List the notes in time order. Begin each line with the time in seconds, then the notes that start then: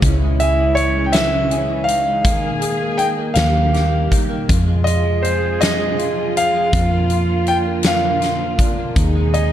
Already playing: F3 G#3 C4
0.02 C#2 C#3 E3 C#4 E4, kick, closed hi-hat
0.22 G#3
0.40 G#4 E5, closed hi-hat
0.59 E3
0.75 C#5, closed hi-hat
0.96 G#3
1.06 G5
1.13 C#3 E5, snare, closed hi-hat
1.32 G#3
1.51 G#4, closed hi-hat
1.68 E3
1.84 D#4 F5
1.88 closed hi-hat
2.06 G#3
2.24 D#2 D#3 A#3 G#4, kick, closed hi-hat
2.44 A#3
2.61 G#4, closed hi-hat
2.81 A#3
2.98 D#4 G5, closed hi-hat
3.19 A#3
3.34 D#2 D#3 G3 G4 F5, snare, closed hi-hat
3.38 G4
3.55 A#3
3.73 G4, snare, closed hi-hat
3.93 A#3
4.11 D#4, kick, closed hi-hat
4.29 A#3
4.48 F2 C3 F3 G#3 F4 G#4, kick, closed hi-hat
4.66 G#3
4.84 F4 D#5, closed hi-hat
5.04 F3
5.23 C4 C5, closed hi-hat
5.41 G#3
5.59 F2 D#5, closed hi-hat
5.63 snare
5.78 G#3
5.97 F4, closed hi-hat
6.16 F3
6.36 C4 F5, closed hi-hat
6.54 G#3
6.73 F2 D3 A#3 F4, kick, closed hi-hat
6.92 A#3
7.10 F4, closed hi-hat
7.28 F3
7.47 D4 G5, closed hi-hat
7.65 A#3
7.83 F2 F5, snare, closed hi-hat
8.02 A#3
8.21 F4, snare, closed hi-hat
8.40 F3
8.58 D4, kick, closed hi-hat
8.77 A#3
8.96 D#2 C3 D#3 G#3 D#4 G#4, kick, closed hi-hat
9.15 G#3
9.34 G#4 D#5, closed hi-hat